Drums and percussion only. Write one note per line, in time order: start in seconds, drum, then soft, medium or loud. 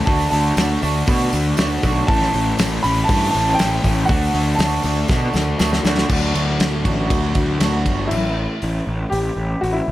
0.07 kick loud
0.07 open hi-hat loud
0.32 open hi-hat medium
0.32 tambourine soft
0.57 snare loud
0.57 open hi-hat medium
0.57 tambourine loud
0.82 open hi-hat medium
0.82 tambourine medium
1.07 kick loud
1.07 open hi-hat medium
1.07 tambourine medium
1.33 open hi-hat medium
1.33 tambourine medium
1.57 snare loud
1.57 open hi-hat medium
1.57 tambourine loud
1.83 kick medium
1.83 open hi-hat medium
1.83 tambourine medium
2.08 kick loud
2.08 open hi-hat medium
2.22 snare soft
2.33 open hi-hat medium
2.33 tambourine soft
2.59 snare loud
2.59 open hi-hat medium
2.59 tambourine loud
2.84 open hi-hat medium
2.84 tambourine medium
3.09 kick loud
3.09 open hi-hat loud
3.09 tambourine medium
3.34 open hi-hat medium
3.34 tambourine medium
3.59 snare loud
3.59 open hi-hat medium
3.59 tambourine medium
3.84 kick medium
3.84 open hi-hat medium
3.84 tambourine medium
4.09 kick loud
4.09 open hi-hat medium
4.09 tambourine soft
4.35 open hi-hat medium
4.35 tambourine soft
4.59 snare loud
4.59 open hi-hat medium
4.59 tambourine medium
4.83 open hi-hat medium
4.83 tambourine medium
5.08 kick loud
5.08 snare medium
5.08 tambourine medium
5.33 snare medium
5.33 tambourine medium
5.59 snare loud
5.59 tambourine medium
5.73 snare medium
5.84 snare loud
5.84 tambourine medium
5.98 snare medium
6.10 kick loud
6.10 crash loud
6.35 ride medium
6.60 snare loud
6.60 ride medium
6.85 kick medium
6.85 ride medium
7.10 kick loud
7.10 ride loud
7.35 kick medium
7.35 ride medium
7.60 snare loud
7.60 ride loud
7.86 kick medium
7.86 ride medium
8.11 crash medium
8.62 open hi-hat soft
9.12 open hi-hat medium
9.64 open hi-hat soft